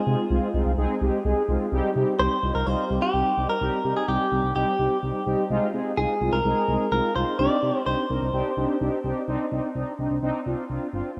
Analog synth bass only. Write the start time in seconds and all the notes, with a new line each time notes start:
0.07 C3
0.30 C2
0.54 C2
0.66 C2
0.78 C2
1.01 C2
1.25 C2
1.48 C2
1.72 C2
1.96 C3
2.19 C2
2.43 C2
2.55 C2
2.67 C2
2.90 C2
3.14 C2
3.38 C2
3.61 C2
3.85 C3
4.08 C2
4.32 C2
4.44 C2
4.55 C2
4.79 C2
5.03 C2
5.26 C2
5.50 C2
5.74 C3
5.97 C2
6.21 C2
6.33 C2
6.45 C2
6.68 C2
6.92 C2
7.15 C2
7.39 C2
7.63 C3
7.86 C2
8.10 C2
8.22 C2
8.33 C2
8.57 C2
8.81 C2
9.04 C2
9.28 C2
9.52 C2
9.75 C2
9.99 C2
10.11 C2
10.22 C2
10.46 C2
10.70 C2
10.93 G1